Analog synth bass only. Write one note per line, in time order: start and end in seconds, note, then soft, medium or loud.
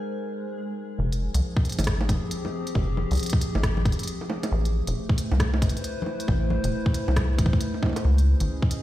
0.99 1.29 F1 loud
1.34 1.41 C2 loud
1.79 2.10 G#1 medium
2.09 2.19 F1 loud
2.75 3.06 F1 loud
3.11 3.17 C2 loud
3.55 3.87 G#1 medium
3.85 3.96 F1 loud
4.52 4.82 A1 loud
4.87 4.94 E1 loud
5.31 5.63 C2 medium
5.62 5.72 A1 medium
6.28 6.59 A1 loud
6.64 6.70 E1 loud
7.08 7.40 C2 medium
7.38 7.49 A1 loud
8.05 8.35 C#2 loud
8.40 8.47 G#1 loud